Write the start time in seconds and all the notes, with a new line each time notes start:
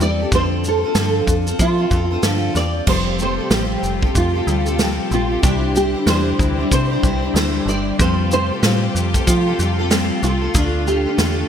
0.00 E2 G3 C4 G4 A4 D5, shaker
0.20 C4 G4 A4
0.32 F2 D3 F3 C4 F4 A4 C5, kick, shaker
0.64 C4 F4 A4 C5, shaker
0.83 C4 F4 A4 C5
0.95 G2 D3 F3 C4 F4 A4 C5, snare, shaker
1.27 F2, kick, shaker
1.46 C4 F4 A4 C5, shaker
1.59 F3 F4, kick, shaker
1.77 C4 F4 A4 C5
1.91 F2 C4 F4 A4 C5, kick, shaker
2.11 C4 F4 A4 C5
2.23 G2 D3 F3 C4 F4 A4 C5, snare, shaker
2.55 E2 C4 F4 A4 C5 D5, snare, shaker
2.87 F1 C3 F3 G3 A3 C4 F4 G4 A4 C5, kick, crash
3.19 G3 C4 G4 A4 C5, shaker
3.38 C4 G4 A4
3.50 A1 F3 G3 C4 G4 A4, snare, shaker
3.83 F1, shaker
4.01 C4 G4 A4, kick
4.15 F2 F4, kick, shaker
4.34 C4 G4 A4
4.47 D2 G3 C4 G4 A4, shaker
4.66 C4 G4 A4, shaker
4.79 F3 G3 C4 G4 A4, snare, shaker
5.11 A#1 G3 C4 F4 G4 A4, shaker
5.30 C4 G4 A4
5.43 C2 C3 D3 E3 G3 C4 D4 E4 G4 C5, kick, shaker
5.74 G3 D4 E4 G4 C5, shaker
5.94 G3 D4 E4 C5
6.06 E2 C3 E3 G3 D4 E4 C5, snare, shaker
6.39 D2, kick, shaker
6.58 G3 D4 E4 C5
6.71 C3 C5, kick, shaker
6.91 G3 D4 E4 C5
7.03 C2 G3 D4 E4 C5, kick, shaker
7.22 G3 D4 E4 C5
7.34 D2 C3 E3 G3 D4 E4 C5, snare, shaker
7.66 G1 G3 D4 E4 D5, shaker
7.70 C5
7.99 F2 C3 F3 G3 A3 C4 F4 G4 A4 C5, kick, shaker
8.31 G3 C4 F4 A4 C5, shaker
8.51 C4 F4 A4
8.63 A2 F3 G3 C4 F4 A4, snare, shaker
8.95 F2, shaker
9.14 C4 F4 A4, kick, shaker
9.27 F3 F4, kick, shaker
9.47 C4 F4 A4
9.59 F2 G3 C4 F4 A4, shaker
9.79 C4 F4 A4
9.90 F3 G3 C4 F4 A4, snare, shaker
10.22 C2 G3 C4 F4 A4, shaker
10.41 C4 F4 A4
10.54 D2 D3 A3 D4 F4 A4, kick, shaker
10.86 A3 D4 F4 G4 A4, shaker
11.06 D4 F4 A4
11.18 E2 D3 A3 D4 F4 A4, snare, shaker